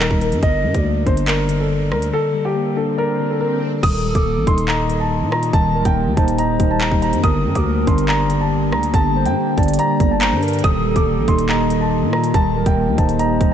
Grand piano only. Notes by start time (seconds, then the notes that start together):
0.00 A#4
0.21 A#4
0.43 D#5
0.75 D5
1.07 C5
1.28 A#4
1.60 A4
1.92 A#4
2.13 A4
2.45 G4
2.77 A4
2.98 A#4
3.31 A4
3.41 A#4
3.83 D#6
4.15 D6
4.47 C6
4.68 A#5
5.00 A5
5.32 A#5
5.53 A5
5.86 G5
6.17 A5
6.39 A#5
6.71 A5
6.81 A#5
7.02 A#5
7.24 D#6
7.56 D6
7.87 C6
8.09 A#5
8.41 A5
8.73 A#5
8.94 A5
9.26 G5
9.58 A5
9.79 A#5
10.11 A5
10.21 A#5
10.64 D#6
10.96 D6
11.28 C6
11.49 A#5
11.81 A5
12.13 A#5
12.34 A5
12.66 G5
12.98 A5
13.19 A#5